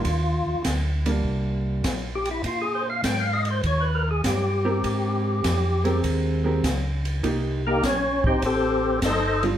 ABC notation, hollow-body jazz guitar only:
X:1
M:4/4
L:1/8
Q:"Swing" 1/4=100
K:Abmix
V:1 name="Hollow-body jazz guitar"
z3 [=G,B,=D]3 z2 | z6 z [C=GB]- | [C=GB]2 z [A,CGB]2 [A,CGB] z2 | [B,E=G] z6 [=G,=DF] |]